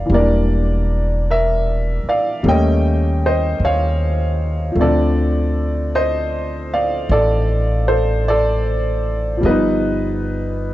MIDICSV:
0, 0, Header, 1, 4, 480
1, 0, Start_track
1, 0, Tempo, 1167315
1, 37, Time_signature, 4, 2, 24, 8
1, 4416, End_track
2, 0, Start_track
2, 0, Title_t, "Grand piano"
2, 0, Program_c, 0, 0
2, 0, Control_c, 0, 64, 127
2, 0, Note_on_c, 0, 60, 41
2, 0, Note_on_c, 0, 62, 46
2, 0, Note_on_c, 0, 70, 53
2, 0, Note_on_c, 0, 74, 65
2, 0, Note_on_c, 0, 77, 78
2, 23, Note_on_c, 0, 52, 40
2, 39, Note_on_c, 0, 55, 37
2, 43, Control_c, 0, 64, 0
2, 44, Note_off_c, 0, 60, 0
2, 44, Note_off_c, 0, 74, 0
2, 46, Note_off_c, 0, 70, 0
2, 50, Note_off_c, 0, 62, 0
2, 53, Note_on_c, 0, 58, 37
2, 59, Note_on_c, 0, 70, 55
2, 59, Note_on_c, 0, 74, 71
2, 62, Note_off_c, 0, 77, 0
2, 68, Note_on_c, 0, 62, 46
2, 120, Control_c, 0, 64, 127
2, 512, Note_off_c, 0, 70, 0
2, 536, Note_on_c, 0, 70, 59
2, 540, Note_on_c, 0, 76, 83
2, 542, Note_off_c, 0, 74, 0
2, 831, Note_off_c, 0, 70, 0
2, 832, Note_off_c, 0, 76, 0
2, 858, Note_on_c, 0, 74, 59
2, 861, Note_on_c, 0, 77, 69
2, 990, Note_off_c, 0, 52, 0
2, 994, Note_off_c, 0, 55, 0
2, 997, Note_off_c, 0, 74, 0
2, 999, Note_off_c, 0, 77, 0
2, 1000, Note_on_c, 0, 55, 43
2, 1003, Control_c, 0, 64, 0
2, 1005, Note_off_c, 0, 58, 0
2, 1006, Note_on_c, 0, 57, 41
2, 1013, Note_off_c, 0, 62, 0
2, 1013, Note_on_c, 0, 58, 40
2, 1020, Note_on_c, 0, 61, 51
2, 1021, Note_on_c, 0, 75, 62
2, 1022, Note_on_c, 0, 79, 79
2, 1084, Control_c, 0, 64, 127
2, 1312, Note_off_c, 0, 75, 0
2, 1339, Note_off_c, 0, 79, 0
2, 1340, Note_on_c, 0, 75, 66
2, 1341, Note_on_c, 0, 72, 53
2, 1478, Note_off_c, 0, 72, 0
2, 1493, Note_off_c, 0, 75, 0
2, 1499, Note_on_c, 0, 73, 62
2, 1500, Note_on_c, 0, 77, 81
2, 1940, Note_on_c, 0, 53, 42
2, 1950, Note_off_c, 0, 57, 0
2, 1951, Note_off_c, 0, 73, 0
2, 1956, Note_on_c, 0, 57, 37
2, 1957, Note_off_c, 0, 55, 0
2, 1961, Control_c, 0, 64, 0
2, 1963, Note_off_c, 0, 58, 0
2, 1967, Note_off_c, 0, 61, 0
2, 1971, Note_on_c, 0, 60, 39
2, 1977, Note_on_c, 0, 74, 72
2, 1980, Note_on_c, 0, 69, 56
2, 1982, Note_off_c, 0, 77, 0
2, 1984, Note_on_c, 0, 50, 45
2, 2036, Control_c, 0, 64, 127
2, 2431, Note_off_c, 0, 69, 0
2, 2448, Note_on_c, 0, 75, 76
2, 2449, Note_on_c, 0, 72, 61
2, 2460, Note_off_c, 0, 74, 0
2, 2744, Note_off_c, 0, 75, 0
2, 2745, Note_off_c, 0, 72, 0
2, 2770, Note_on_c, 0, 77, 70
2, 2771, Note_on_c, 0, 74, 55
2, 2912, Note_off_c, 0, 74, 0
2, 2926, Note_on_c, 0, 74, 73
2, 2927, Note_off_c, 0, 77, 0
2, 2928, Note_on_c, 0, 69, 61
2, 3220, Note_off_c, 0, 74, 0
2, 3221, Note_off_c, 0, 69, 0
2, 3241, Note_on_c, 0, 72, 64
2, 3243, Note_on_c, 0, 69, 53
2, 3391, Note_off_c, 0, 69, 0
2, 3406, Note_off_c, 0, 72, 0
2, 3406, Note_on_c, 0, 74, 78
2, 3412, Note_on_c, 0, 69, 59
2, 3848, Note_off_c, 0, 53, 0
2, 3854, Note_on_c, 0, 53, 48
2, 3865, Note_off_c, 0, 74, 0
2, 3868, Note_off_c, 0, 69, 0
2, 3869, Note_on_c, 0, 55, 44
2, 3877, Note_off_c, 0, 57, 0
2, 3882, Control_c, 0, 64, 0
2, 3884, Note_off_c, 0, 60, 0
2, 3886, Note_on_c, 0, 75, 68
2, 3887, Note_on_c, 0, 59, 44
2, 3890, Note_off_c, 0, 50, 0
2, 3890, Note_on_c, 0, 71, 57
2, 3902, Note_on_c, 0, 63, 52
2, 3965, Control_c, 0, 64, 127
2, 4416, Note_off_c, 0, 53, 0
2, 4416, Note_off_c, 0, 55, 0
2, 4416, Note_off_c, 0, 59, 0
2, 4416, Note_off_c, 0, 63, 0
2, 4416, Note_off_c, 0, 71, 0
2, 4416, Note_off_c, 0, 75, 0
2, 4416, End_track
3, 0, Start_track
3, 0, Title_t, "Upright bass"
3, 0, Program_c, 1, 32
3, 39, Note_on_c, 1, 28, 73
3, 817, Note_off_c, 1, 28, 0
3, 1002, Note_on_c, 1, 39, 74
3, 1463, Note_off_c, 1, 39, 0
3, 1478, Note_on_c, 1, 39, 64
3, 1940, Note_off_c, 1, 39, 0
3, 1955, Note_on_c, 1, 38, 68
3, 2898, Note_off_c, 1, 38, 0
3, 2916, Note_on_c, 1, 33, 75
3, 3861, Note_off_c, 1, 33, 0
3, 3878, Note_on_c, 1, 31, 73
3, 4416, Note_off_c, 1, 31, 0
3, 4416, End_track
4, 0, Start_track
4, 0, Title_t, "Muted upright bass strokes"
4, 836, Note_on_c, 9, 29, 34
4, 877, Note_off_c, 9, 29, 0
4, 4416, End_track
0, 0, End_of_file